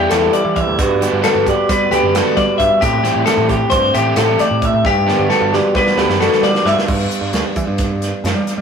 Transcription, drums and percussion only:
0.11 snare, closed hi-hat
0.33 closed hi-hat
0.56 kick, closed hi-hat
0.79 kick, closed hi-hat
1.02 closed hi-hat
1.24 snare, closed hi-hat
1.47 kick, closed hi-hat
1.69 kick, closed hi-hat
1.92 closed hi-hat
2.15 snare, closed hi-hat
2.37 kick, snare, closed hi-hat
2.60 kick, closed hi-hat
2.82 kick, closed hi-hat
3.05 snare, closed hi-hat
3.27 snare, closed hi-hat
3.49 kick, closed hi-hat
3.71 kick, closed hi-hat
3.95 closed hi-hat
4.16 snare, closed hi-hat
4.39 snare, closed hi-hat
4.62 kick, closed hi-hat
4.85 kick, snare
5.09 snare
5.31 snare
5.54 snare
5.75 kick, snare
5.87 snare
5.98 snare
6.10 snare
6.21 snare
6.33 snare
6.43 snare
6.55 snare
6.66 snare
6.79 snare
6.88 kick, crash
7.11 closed hi-hat
7.33 snare, closed hi-hat
7.56 kick, closed hi-hat
7.78 kick, snare, closed hi-hat
8.02 snare, closed hi-hat
8.25 snare, closed hi-hat
8.47 snare, closed hi-hat

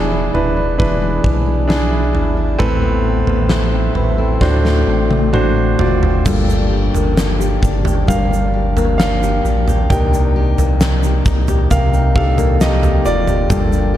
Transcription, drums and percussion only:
0.35 floor tom
0.80 kick
1.24 kick
1.70 snare
2.15 floor tom
2.60 kick, floor tom
3.27 floor tom
3.49 snare
3.95 floor tom
4.41 kick, snare
4.65 snare
5.11 high tom
5.34 mid tom
5.79 floor tom
6.03 floor tom
6.26 kick, floor tom, crash, shaker
6.50 shaker
6.95 floor tom, shaker
7.17 snare, shaker
7.41 shaker
7.63 kick, shaker
7.85 floor tom, shaker
8.08 kick, floor tom, shaker
8.33 shaker
8.77 floor tom, shaker
9.00 snare, shaker
9.23 shaker
9.45 shaker
9.68 floor tom, shaker
9.90 kick, floor tom, shaker
10.14 shaker
10.58 floor tom, shaker
10.81 snare, shaker
11.03 shaker
11.26 kick, shaker
11.48 floor tom, shaker
11.70 kick, floor tom, shaker
11.94 shaker
12.16 kick
12.38 floor tom, shaker
12.61 snare, shaker
12.83 floor tom, shaker
13.05 shaker
13.27 floor tom, shaker
13.50 kick, floor tom, shaker
13.73 shaker

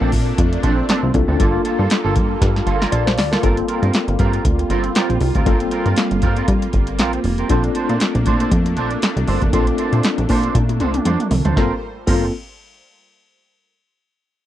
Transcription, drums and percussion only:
0.12 kick, open hi-hat
0.38 kick, closed hi-hat
0.53 closed hi-hat
0.63 kick, closed hi-hat
0.89 snare, clap, closed hi-hat
1.14 kick, closed hi-hat
1.40 kick, closed hi-hat
1.65 closed hi-hat
1.90 snare, clap, closed hi-hat
2.16 kick, closed hi-hat
2.41 kick, snare, closed hi-hat
2.56 snare
2.67 closed hi-hat
2.82 snare
2.92 closed hi-hat
3.07 snare
3.18 snare, open hi-hat
3.33 snare
3.43 kick, closed hi-hat
3.57 closed hi-hat
3.68 closed hi-hat
3.83 closed hi-hat
3.93 snare, clap, closed hi-hat
4.08 closed hi-hat
4.19 kick, closed hi-hat
4.33 closed hi-hat
4.45 kick, closed hi-hat
4.59 closed hi-hat
4.70 closed hi-hat
4.84 closed hi-hat
4.95 snare, clap, closed hi-hat
5.10 closed hi-hat
5.21 open hi-hat
5.35 kick, closed hi-hat
5.46 kick, closed hi-hat
5.60 closed hi-hat
5.71 closed hi-hat
5.86 closed hi-hat
5.96 snare, clap, closed hi-hat
6.11 closed hi-hat
6.22 kick, closed hi-hat
6.36 closed hi-hat
6.48 kick, closed hi-hat
6.62 closed hi-hat
6.73 kick, closed hi-hat
6.87 closed hi-hat
6.99 snare, clap, closed hi-hat
7.13 closed hi-hat
7.24 open hi-hat
7.38 closed hi-hat
7.49 kick, closed hi-hat
7.64 closed hi-hat
7.75 closed hi-hat
7.89 closed hi-hat
8.00 snare, clap, closed hi-hat
8.15 closed hi-hat
8.26 kick, closed hi-hat
8.40 closed hi-hat
8.51 kick, closed hi-hat
8.66 closed hi-hat
8.77 closed hi-hat
8.91 closed hi-hat
9.02 snare, clap, closed hi-hat
9.17 closed hi-hat
9.28 open hi-hat
9.42 kick, closed hi-hat
9.53 kick, closed hi-hat
9.67 closed hi-hat
9.78 closed hi-hat
9.93 closed hi-hat
10.03 snare, clap, closed hi-hat
10.18 closed hi-hat
10.29 kick, open hi-hat
10.43 closed hi-hat
10.55 kick, closed hi-hat, high tom
10.69 closed hi-hat, high tom
10.80 closed hi-hat, mid tom
10.94 closed hi-hat, mid tom
11.05 closed hi-hat, mid tom
11.20 closed hi-hat, mid tom
11.31 floor tom, open hi-hat
11.45 closed hi-hat, floor tom
11.56 kick, snare
12.07 kick, crash

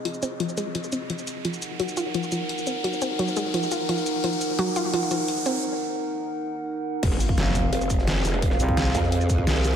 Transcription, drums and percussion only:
0.05 closed hi-hat
0.14 shaker
0.23 closed hi-hat, shaker
0.40 closed hi-hat
0.49 shaker
0.57 closed hi-hat, shaker
0.75 closed hi-hat
0.84 shaker
0.92 closed hi-hat, shaker
1.10 closed hi-hat
1.19 shaker
1.27 closed hi-hat, shaker
1.45 closed hi-hat
1.53 shaker
1.62 closed hi-hat, shaker
1.80 closed hi-hat
1.88 shaker
1.97 closed hi-hat, shaker
2.14 closed hi-hat
2.23 shaker
2.32 closed hi-hat, shaker
2.49 closed hi-hat
2.58 shaker
2.67 closed hi-hat, shaker
2.84 closed hi-hat
2.93 shaker
3.02 closed hi-hat, shaker
3.19 closed hi-hat
3.28 shaker
3.37 closed hi-hat, shaker
3.54 closed hi-hat
3.63 shaker
3.72 closed hi-hat, shaker
3.89 closed hi-hat
3.98 shaker
4.06 closed hi-hat, shaker
4.24 closed hi-hat
4.33 shaker
4.41 closed hi-hat, shaker
4.59 closed hi-hat
4.67 shaker
4.76 closed hi-hat, shaker
4.94 closed hi-hat
5.02 shaker
5.11 closed hi-hat, shaker
5.28 closed hi-hat
5.37 shaker
5.46 closed hi-hat, shaker
7.03 kick, closed hi-hat, crash
7.12 snare
7.20 snare, closed hi-hat, shaker
7.29 kick
7.37 snare, closed hi-hat
7.55 kick, closed hi-hat, shaker
7.72 closed hi-hat
7.81 closed hi-hat, shaker
7.90 kick, closed hi-hat, shaker
7.98 snare
8.07 snare, closed hi-hat
8.16 snare
8.25 snare, closed hi-hat, open hi-hat, shaker
8.34 snare
8.42 kick, closed hi-hat
8.51 snare
8.60 closed hi-hat, shaker
8.69 kick, closed hi-hat
8.77 snare, closed hi-hat
8.85 snare
8.95 kick, snare, closed hi-hat, shaker
9.03 snare
9.12 closed hi-hat
9.21 shaker
9.29 kick, closed hi-hat, shaker
9.38 kick
9.47 snare, closed hi-hat
9.56 shaker
9.64 snare, closed hi-hat, open hi-hat, shaker
9.73 closed hi-hat

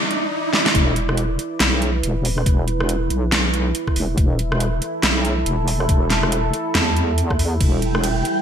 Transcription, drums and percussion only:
0.11 closed hi-hat
0.53 snare
0.66 snare
0.75 kick, closed hi-hat
0.96 closed hi-hat
1.09 cross-stick
1.17 closed hi-hat
1.39 closed hi-hat
1.60 snare, closed hi-hat
1.82 closed hi-hat
2.03 closed hi-hat
2.25 open hi-hat
2.38 cross-stick
2.46 kick, closed hi-hat
2.68 closed hi-hat
2.80 cross-stick
2.89 closed hi-hat
3.10 closed hi-hat
3.32 snare, closed hi-hat
3.54 closed hi-hat
3.75 closed hi-hat
3.88 kick, cross-stick
3.96 open hi-hat
4.18 kick, closed hi-hat
4.39 closed hi-hat
4.52 cross-stick
4.60 closed hi-hat
4.82 closed hi-hat
5.03 snare, closed hi-hat
5.25 closed hi-hat
5.46 closed hi-hat
5.68 open hi-hat
5.80 cross-stick
5.89 kick, closed hi-hat
6.10 snare, closed hi-hat
6.23 cross-stick
6.32 closed hi-hat
6.54 closed hi-hat
6.75 snare, closed hi-hat
6.97 closed hi-hat
7.18 closed hi-hat
7.30 kick, cross-stick
7.39 open hi-hat
7.61 kick, closed hi-hat, ride
7.82 closed hi-hat
7.95 cross-stick
8.04 closed hi-hat, ride
8.25 closed hi-hat

